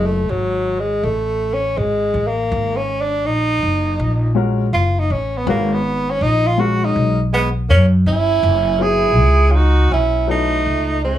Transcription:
0.00 0.25 F#1 loud
0.06 0.31 A3 medium
0.29 0.99 G#1 loud
0.29 0.81 F#3 medium
0.80 1.06 G#3 medium
1.03 1.74 A1 medium
1.03 1.55 A3 loud
1.54 1.79 C#4 medium
1.77 2.12 G#1 medium
1.77 2.29 G#3 loud
2.14 2.49 A1 medium
2.27 2.78 A#3 loud
2.52 3.26 G#1 loud
2.76 3.03 C#4 loud
3.01 3.27 D4 loud
3.26 3.61 A#1 loud
3.26 4.37 D#4 loud
3.63 3.98 F#1 medium
3.99 4.70 A#1 loud
4.35 4.65 G#3 medium
4.35 4.65 C#4 medium
4.35 4.66 F#4 medium
4.35 4.66 A#4 medium
4.73 5.08 F#1 loud
4.73 5.01 F4 medium
4.99 5.13 D#4 medium
5.10 5.45 A1 medium
5.10 5.39 C#4 medium
5.37 5.49 B3 medium
5.46 6.17 G#1 loud
5.46 5.76 G#3 medium
5.46 5.75 A#3 loud
5.46 5.77 C#4 medium
5.46 5.77 F#4 medium
5.46 5.77 B4 medium
5.74 6.12 B3 medium
6.10 6.24 C#4 loud
6.21 6.92 A#1 medium
6.21 6.48 D#4 loud
6.47 6.61 F4 loud
6.57 7.14 G#3 medium
6.57 7.15 C#4 medium
6.57 7.15 F#4 medium
6.57 6.86 F#4 loud
6.57 7.16 A#4 medium
6.85 7.21 D#4 medium
6.96 7.71 B1 medium
7.33 7.49 G#3 medium
7.33 7.50 B3 medium
7.69 8.05 F#2 loud
7.69 7.85 A#3 medium
7.69 7.86 C#4 medium
8.06 8.42 G1 loud
8.06 8.83 C#4 medium
8.06 8.83 E4 loud
8.43 9.17 F#1 loud
8.79 9.09 F#3 medium
8.79 9.10 B3 medium
8.79 9.10 E4 medium
8.79 9.51 E4 medium
8.79 9.11 G#4 medium
8.79 9.53 G#4 loud
9.17 9.88 C#2 medium
9.49 9.55 C#4 medium
9.49 9.58 F4 medium
9.54 9.91 D#4 medium
9.54 9.93 F#4 loud
9.91 10.62 B1 loud
9.91 10.26 C#4 medium
9.91 10.27 E4 loud
10.27 10.58 F#3 medium
10.27 10.99 A3 medium
10.27 10.58 B3 medium
10.27 11.00 D#4 loud
10.27 10.58 E4 medium
10.27 10.59 A4 medium
10.66 11.19 C#2 medium
11.04 11.19 A3 medium
11.04 11.19 C#4 loud

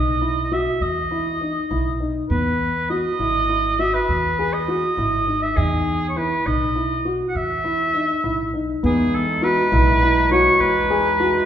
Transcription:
0.00 0.66 B1 medium
0.00 0.12 D#4 medium
0.00 0.54 D#5 medium
0.21 0.41 E4 medium
0.52 0.91 F#4 medium
0.52 0.83 E5 medium
0.81 1.55 E2 medium
0.81 2.01 D#5 medium
1.11 1.31 E4 medium
1.41 1.61 D#4 medium
1.71 2.20 B1 medium
1.71 1.91 E4 medium
2.00 2.20 D#4 medium
2.30 3.05 E2 medium
2.30 2.70 B3 medium
2.30 2.86 B4 medium
2.90 3.10 F#4 medium
2.90 3.81 D#5 loud
3.19 3.94 G#1 medium
3.19 3.39 E4 medium
3.49 3.69 E4 medium
3.79 4.19 F#4 medium
3.79 3.96 E5 medium
3.94 4.55 B4 medium
4.09 4.83 E2 medium
4.39 4.59 G#4 medium
4.53 5.44 D#5 medium
4.68 4.88 F#4 medium
4.97 5.47 G#1 medium
4.97 5.18 E4 medium
5.27 5.47 D#4 medium
5.42 5.58 E5 medium
5.57 6.31 E2 medium
5.57 5.97 D#4 medium
5.57 6.08 G#4 medium
6.09 6.19 C#5 soft
6.16 6.36 E4 medium
6.16 6.48 B4 medium
6.46 7.20 B1 medium
6.46 6.66 D#4 medium
6.46 7.09 D#5 medium
6.75 6.96 E4 medium
7.05 7.45 F#4 medium
7.28 7.37 F#5 medium
7.35 8.09 E2 medium
7.35 8.54 E5 loud
7.64 7.85 E4 medium
7.94 8.14 D#4 medium
8.24 8.74 B1 medium
8.24 8.44 E4 medium
8.54 8.74 D#4 medium
8.83 9.58 E2 medium
8.83 11.46 E3 medium
8.83 11.46 G#3 medium
8.83 9.23 B3 medium
8.83 11.46 D#4 medium
8.83 9.16 G#4 medium
9.15 9.45 A4 medium
9.42 9.62 F#4 medium
9.42 10.31 B4 loud
9.72 10.46 B1 medium
9.72 9.92 E4 medium
10.02 10.22 E4 medium
10.31 10.71 F#4 medium
10.31 10.62 C#5 medium
10.60 11.34 E2 medium
10.60 11.46 B4 medium
10.90 11.10 G#4 medium
11.20 11.40 F#4 medium

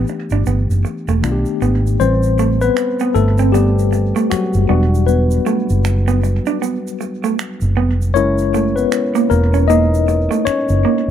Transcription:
0.00 1.17 E3 medium
0.00 1.18 A3 medium
0.00 1.19 B3 medium
0.00 1.20 D4 medium
0.00 1.21 G4 medium
0.07 muted clean electric guitar stroke soft
0.07 shaker soft
0.30 0.44 G1 medium
0.30 0.42 D4 medium
0.30 shaker soft
0.46 0.67 G1 medium
0.46 0.63 B3 medium
0.46 shaker medium
0.70 0.83 F#1 medium
0.70 shaker soft
0.85 muted clean electric guitar stroke soft
0.85 shaker soft
1.08 1.21 E1 medium
1.08 1.19 A3 medium
1.08 shaker soft
1.22 1.44 B1 medium
1.22 1.99 D#3 medium
1.22 1.99 A3 medium
1.22 2.00 B3 medium
1.22 2.00 D4 medium
1.22 1.32 F4 medium
1.22 finger snap medium
1.22 shaker medium
1.32 2.04 G4 medium
1.46 shaker soft
1.62 1.96 G#1 medium
1.62 1.78 B3 medium
1.62 shaker soft
1.87 shaker soft
2.00 2.69 A1 loud
2.00 2.54 G3 medium
2.00 2.58 C4 medium
2.00 2.54 B4 soft
2.00 2.63 C5 loud
2.00 shaker medium
2.23 shaker soft
2.39 2.55 A3 medium
2.39 shaker medium
2.61 3.12 B3 medium
2.61 3.17 B4 loud
2.61 shaker soft
2.77 finger snap medium
2.77 shaker medium
3.00 3.11 B3 medium
3.00 shaker soft
3.14 4.11 G1 medium
3.14 3.52 A3 medium
3.14 3.54 A4 medium
3.14 muted clean electric guitar stroke soft
3.14 shaker soft
3.38 3.49 C4 medium
3.38 shaker soft
3.52 4.27 G3 medium
3.52 3.70 B3 medium
3.52 4.26 G4 medium
3.52 shaker medium
3.79 shaker soft
3.93 muted clean electric guitar stroke soft
3.93 shaker soft
4.16 4.26 A3 medium
4.16 shaker medium
4.30 5.04 F#3 medium
4.30 4.69 F#4 medium
4.30 finger snap medium
4.30 muted fingered electric bass stroke soft
4.30 shaker medium
4.53 4.68 F#1 medium
4.53 shaker soft
4.69 5.38 E1 loud
4.69 7.73 G3 medium
4.69 4.85 B3 medium
4.69 7.73 D4 medium
4.69 7.73 F#4 medium
4.95 shaker soft
5.07 6.58 B3 medium
5.07 6.57 B4 medium
5.07 shaker medium
5.31 shaker soft
5.46 5.62 A3 medium
5.46 shaker medium
5.69 6.38 F#1 medium
5.69 shaker soft
5.85 finger snap medium
5.85 shaker medium
6.08 6.18 B3 medium
6.08 shaker medium
6.23 muted clean electric guitar stroke soft
6.23 shaker soft
6.46 6.57 D4 medium
6.46 shaker soft
6.62 6.78 B3 medium
6.62 shaker medium
6.87 shaker soft
7.01 muted clean electric guitar stroke soft
7.01 shaker soft
7.24 7.34 A3 medium
7.24 shaker medium
7.39 finger snap medium
7.39 shaker medium
7.61 7.78 F#1 loud
7.61 shaker soft
7.77 8.16 F1 medium
7.77 7.93 B3 medium
8.02 shaker soft
8.14 8.84 F#1 loud
8.14 9.26 G#3 medium
8.14 8.73 C#4 medium
8.14 9.27 E4 medium
8.14 9.27 A#4 medium
8.14 8.78 C#5 loud
8.14 shaker medium
8.38 shaker soft
8.54 8.70 A3 medium
8.54 shaker soft
8.76 9.27 B3 medium
8.76 9.26 B4 loud
8.76 shaker soft
8.92 finger snap medium
8.92 shaker medium
9.15 9.26 A#3 medium
9.15 shaker medium
9.30 10.27 E1 loud
9.30 9.67 A#3 medium
9.30 9.70 A#4 loud
9.30 muted clean electric guitar stroke soft
9.30 shaker soft
9.54 9.64 C#4 medium
9.54 shaker soft
9.68 9.86 A#3 medium
9.68 10.42 D#4 medium
9.68 10.48 D#5 loud
9.68 shaker medium
9.94 shaker medium
10.08 muted clean electric guitar stroke soft
10.08 shaker soft
10.31 10.41 A3 medium
10.31 shaker medium
10.45 11.11 C#4 medium
10.45 11.11 C#5 medium
10.45 finger snap medium
10.45 muted fingered electric bass stroke soft
10.45 shaker medium
10.69 10.83 F#1 loud
10.69 shaker soft
10.85 11.01 A#3 medium

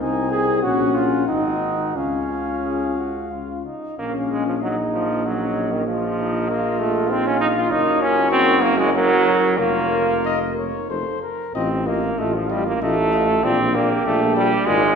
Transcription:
0.00 0.65 C2 medium
0.00 0.65 C4 medium
0.00 0.59 D#4 medium
0.00 0.30 D#4 medium
0.00 0.64 G#5 medium
0.31 0.62 G#4 medium
0.62 1.28 A#1 medium
0.62 1.27 C#4 medium
0.62 0.97 F#4 medium
0.62 1.28 F#5 medium
0.95 1.27 F4 medium
1.27 1.95 G#1 medium
1.27 1.94 C4 medium
1.27 1.98 D#4 medium
1.27 1.97 D#4 medium
1.27 1.97 F#5 medium
1.95 3.62 C#2 medium
1.95 2.56 C#4 medium
1.95 3.66 C#4 medium
1.95 3.65 F4 medium
1.95 3.66 F5 medium
2.63 2.99 G#4 medium
2.97 3.32 F#4 medium
3.31 3.65 F4 medium
3.66 3.98 D#4 soft
3.99 7.68 A#1 medium
3.99 4.13 A#3 medium
3.99 4.58 C#4 medium
3.99 4.63 F5 medium
4.30 4.46 G#3 medium
4.47 4.54 F3 medium
4.61 4.77 F#3 medium
4.61 5.85 D#4 medium
4.61 5.24 D#4 medium
4.61 5.86 D#5 medium
4.94 5.27 F3 medium
5.25 5.74 F#3 medium
5.25 5.89 C#4 medium
5.72 5.87 D#3 medium
5.87 6.51 F3 medium
5.87 6.48 F4 medium
5.87 6.18 F4 medium
5.87 7.13 D#5 medium
6.19 6.49 D#4 medium
6.49 6.82 A#3 loud
6.49 7.12 F4 medium
6.49 8.29 F4 medium
6.80 7.12 A3 medium
7.10 7.28 C4 loud
7.10 7.71 D#4 medium
7.10 7.70 F5 medium
7.27 7.40 C#4 medium
7.41 7.48 D#4 loud
7.57 7.72 F4 loud
7.71 9.55 F#1 medium
7.71 8.03 D#4 loud
7.71 8.91 A#4 medium
7.71 8.90 C#5 medium
8.02 8.31 C#4 loud
8.31 8.64 C4 loud
8.31 8.93 F#4 medium
8.63 8.80 A#3 loud
8.78 8.93 G#3 loud
8.94 9.60 F#3 loud
8.94 9.58 A#4 medium
8.94 9.58 A#4 loud
8.94 9.57 C#5 medium
9.58 10.72 F1 medium
9.58 10.89 A#3 loud
9.58 11.19 F4 medium
9.58 10.87 A#4 medium
9.58 10.08 C#5 medium
10.25 10.39 D#5 medium
10.58 10.89 C#5 medium
10.89 11.04 F1 medium
10.89 11.22 A4 medium
10.89 11.22 C5 medium
11.22 11.54 A#4 medium
11.55 12.11 A1 medium
11.55 11.88 C4 medium
11.55 11.69 F4 medium
11.55 11.69 D#5 medium
11.86 12.20 A#3 medium
11.86 12.01 F4 medium
11.86 12.01 D#5 medium
12.18 12.74 A1 medium
12.18 12.37 A3 medium
12.18 12.33 F4 medium
12.18 12.84 F4 medium
12.18 12.33 D#5 medium
12.35 12.52 F3 medium
12.50 12.66 G3 medium
12.50 12.64 F4 medium
12.50 12.64 D#5 medium
12.67 12.82 A#3 medium
12.82 13.37 A1 medium
12.82 13.46 A3 loud
12.82 13.15 D#4 medium
12.82 12.96 F4 medium
12.82 12.96 D#5 medium
13.12 13.44 F4 medium
13.12 13.27 F4 medium
13.12 13.26 D#5 medium
13.44 13.99 A#1 medium
13.44 13.76 C4 loud
13.44 13.58 F4 medium
13.44 14.69 G4 medium
13.44 13.58 D5 medium
13.75 14.07 A#3 medium
13.75 13.90 F4 medium
13.75 13.89 D5 medium
14.06 14.60 A#1 medium
14.06 14.36 A3 loud
14.06 14.20 F4 medium
14.06 14.20 D5 medium
14.36 14.69 G3 loud
14.36 14.51 F4 medium
14.36 14.50 D5 medium
14.67 14.95 G#1 medium
14.67 14.95 G#3 loud
14.67 14.95 F4 loud
14.67 14.81 A#4 medium
14.67 14.80 D5 medium

